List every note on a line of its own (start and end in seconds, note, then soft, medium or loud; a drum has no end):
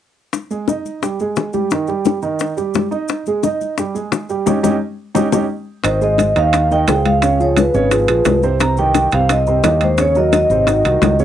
0.33 high bongo medium
0.33 high conga soft
0.33 maracas medium
0.50 0.65 G#3 medium
0.50 0.65 G#4 medium
0.50 high conga soft
0.50 maracas soft
0.68 0.96 D#4 medium
0.68 0.97 D#5 medium
0.68 high bongo soft
0.68 high conga medium
0.68 maracas medium
0.86 high conga soft
0.86 maracas soft
1.02 1.16 G3 medium
1.02 1.17 G4 medium
1.02 high bongo medium
1.02 high conga soft
1.02 maracas medium
1.20 1.48 G#3 medium
1.20 1.49 G#4 medium
1.20 high conga soft
1.20 maracas soft
1.36 high bongo medium
1.36 low bongo medium
1.36 high conga soft
1.36 maracas medium
1.53 1.68 G3 medium
1.53 1.68 G4 medium
1.53 high conga medium
1.53 maracas soft
1.71 1.86 D#3 medium
1.71 1.86 D#4 medium
1.71 high bongo medium
1.71 high conga soft
1.71 maracas medium
1.87 2.17 G3 medium
1.87 2.17 G4 medium
1.87 high bongo soft
1.87 high conga soft
1.87 maracas soft
2.05 high bongo medium
2.05 high conga medium
2.05 maracas medium
2.22 2.51 D#3 medium
2.22 2.51 D#4 medium
2.22 maracas soft
2.39 high bongo medium
2.39 high conga soft
2.39 maracas medium
2.57 2.85 G3 medium
2.57 2.86 G4 medium
2.57 high bongo soft
2.57 high conga soft
2.57 maracas soft
2.74 high bongo medium
2.74 low bongo medium
2.74 high conga medium
2.74 maracas medium
2.91 3.20 D#4 medium
2.91 3.20 D#5 medium
2.91 high bongo soft
2.91 high conga soft
2.91 maracas soft
3.08 high bongo medium
3.08 high conga soft
3.08 maracas medium
3.26 3.41 G#3 medium
3.26 3.41 G#4 medium
3.26 high conga soft
3.26 maracas soft
3.43 3.72 D#4 medium
3.43 3.72 D#5 medium
3.43 high bongo medium
3.43 high conga medium
3.43 maracas medium
3.61 high conga soft
3.61 maracas soft
3.78 3.92 G3 medium
3.78 3.93 G4 medium
3.78 high bongo medium
3.78 high conga soft
3.78 maracas medium
3.95 4.23 G#3 medium
3.95 4.23 G#4 medium
3.95 high conga soft
3.95 maracas soft
4.12 high bongo medium
4.12 low bongo medium
4.12 high conga soft
4.12 maracas medium
4.29 4.44 G3 medium
4.29 4.44 G4 medium
4.29 maracas soft
4.46 4.58 C#4 medium
4.46 4.58 D#4 medium
4.46 4.57 G4 medium
4.46 low bongo medium
4.46 high conga medium
4.46 maracas medium
4.63 4.75 C#4 medium
4.63 4.75 D#4 medium
4.63 4.75 G4 medium
4.63 low bongo medium
4.63 high conga medium
4.63 maracas medium
5.15 5.26 C#4 medium
5.15 5.26 D#4 medium
5.15 5.26 G4 medium
5.15 low bongo medium
5.15 high conga medium
5.15 maracas medium
5.32 5.44 C#4 medium
5.32 5.44 D#4 medium
5.32 5.44 G4 medium
5.32 low bongo medium
5.32 high conga medium
5.32 maracas medium
5.84 6.33 G#1 medium
5.84 5.98 D#3 medium
5.84 5.99 D#4 medium
5.84 6.03 C5 medium
5.84 5.99 D#5 medium
5.84 high bongo medium
5.84 high conga soft
5.84 high timbale medium
5.84 maracas medium
6.01 6.30 G#3 medium
6.01 6.30 G#4 medium
6.01 6.30 C5 medium
6.01 6.35 D#5 medium
6.01 high conga soft
6.01 maracas soft
6.18 high bongo medium
6.18 high conga medium
6.18 high timbale medium
6.18 low timbale medium
6.18 maracas medium
6.36 6.84 D#2 medium
6.36 6.65 D#3 medium
6.36 6.65 D#4 medium
6.36 6.65 D#5 medium
6.36 6.73 F5 medium
6.36 high conga soft
6.36 high timbale medium
6.36 maracas soft
6.53 high bongo medium
6.53 high conga soft
6.53 high timbale medium
6.53 maracas medium
6.71 6.85 D#3 medium
6.71 6.85 D#4 medium
6.71 6.86 D#5 medium
6.71 7.07 G5 medium
6.71 high conga soft
6.71 maracas soft
6.88 7.69 C#2 medium
6.88 7.16 G#3 medium
6.88 7.17 G#4 medium
6.88 7.17 C5 medium
6.88 high bongo medium
6.88 low bongo medium
6.88 high conga soft
6.88 high timbale medium
6.88 low timbale medium
6.88 maracas medium
7.05 7.41 F5 medium
7.05 high conga medium
7.05 high timbale medium
7.05 maracas soft
7.22 7.36 C#3 medium
7.22 7.36 C#4 medium
7.22 7.37 C#5 medium
7.22 high bongo medium
7.22 high conga soft
7.22 high timbale medium
7.22 maracas medium
7.40 7.68 F3 medium
7.40 7.68 F4 medium
7.40 7.69 G#4 medium
7.40 7.59 C#5 medium
7.40 high bongo soft
7.40 high conga soft
7.40 maracas soft
7.56 8.40 B4 medium
7.56 high bongo medium
7.56 high conga medium
7.56 high timbale medium
7.56 low timbale soft
7.56 maracas medium
7.74 8.06 G#1 medium
7.74 7.88 C#3 medium
7.74 7.88 C#4 medium
7.74 7.89 C#5 medium
7.74 maracas soft
7.91 8.06 F3 medium
7.91 8.06 F4 medium
7.91 8.06 G#4 medium
7.91 high bongo medium
7.91 high conga soft
7.91 high timbale medium
7.91 maracas medium
8.08 8.25 A#1 medium
8.08 8.37 F3 medium
8.08 8.38 F4 medium
8.08 8.38 G#4 medium
8.08 high bongo soft
8.08 high conga soft
8.08 high timbale medium
8.08 maracas soft
8.25 9.07 C2 medium
8.25 high bongo medium
8.25 low bongo medium
8.25 high conga medium
8.25 high timbale medium
8.25 low timbale medium
8.25 maracas medium
8.43 8.58 C3 medium
8.43 8.58 C4 medium
8.43 8.58 C5 medium
8.43 high bongo soft
8.43 high conga soft
8.43 maracas soft
8.60 8.75 C3 medium
8.60 8.75 C4 medium
8.60 8.75 C5 medium
8.60 8.77 A#5 loud
8.60 high bongo medium
8.60 high conga soft
8.60 high timbale medium
8.60 maracas medium
8.77 9.07 D#3 medium
8.77 9.07 D#4 medium
8.77 9.07 G4 medium
8.77 9.11 G5 medium
8.77 high conga soft
8.77 maracas soft
8.94 high bongo medium
8.94 high conga medium
8.94 high timbale medium
8.94 low timbale soft
8.94 maracas medium
9.11 9.61 C2 medium
9.11 9.42 C3 medium
9.11 9.42 C4 medium
9.11 9.42 C5 medium
9.11 9.29 F5 medium
9.11 high conga soft
9.11 high timbale medium
9.11 maracas soft
9.29 9.84 D#5 medium
9.29 high bongo medium
9.29 high conga soft
9.29 high timbale medium
9.29 maracas medium
9.47 9.61 C3 medium
9.47 9.62 C4 medium
9.47 9.62 C5 medium
9.47 high conga soft
9.47 maracas soft
9.64 10.45 D#2 medium
9.64 9.93 D#3 medium
9.64 9.93 D#4 medium
9.64 9.93 G4 medium
9.64 high bongo medium
9.64 low bongo medium
9.64 high conga soft
9.64 high timbale medium
9.64 low timbale medium
9.64 maracas medium
9.81 9.99 C5 medium
9.81 high conga medium
9.81 high timbale medium
9.81 maracas soft
9.98 10.13 C#3 medium
9.98 10.13 C#4 medium
9.98 10.14 C#5 medium
9.98 10.16 C#5 medium
9.98 high bongo medium
9.98 high conga soft
9.98 high timbale medium
9.98 maracas medium
10.15 10.45 F#3 medium
10.15 10.45 F#4 medium
10.15 10.45 A#4 medium
10.15 10.34 D#5 medium
10.15 high bongo soft
10.15 high conga soft
10.15 maracas soft
10.33 11.17 D#5 medium
10.33 high bongo medium
10.33 high conga medium
10.33 high timbale medium
10.33 low timbale medium
10.33 maracas medium
10.50 10.82 G#1 medium
10.50 10.65 C3 medium
10.50 10.65 C4 medium
10.50 10.65 C5 medium
10.50 maracas soft
10.67 10.82 D#3 medium
10.67 10.82 D#4 medium
10.67 10.82 F#4 medium
10.67 high bongo medium
10.67 high conga soft
10.67 high timbale medium
10.67 maracas medium
10.85 11.01 C2 medium
10.85 11.14 D#3 medium
10.85 11.14 D#4 medium
10.85 11.14 F#4 medium
10.85 high bongo soft
10.85 high conga soft
10.85 high timbale medium
10.85 maracas soft
11.02 11.24 C#2 medium
11.02 high bongo medium
11.02 low bongo medium
11.02 high conga medium
11.02 high timbale medium
11.02 low timbale medium
11.02 maracas medium
11.19 11.24 C#3 medium
11.19 11.24 C#4 medium
11.19 11.24 C#5 medium
11.19 high bongo soft
11.19 maracas soft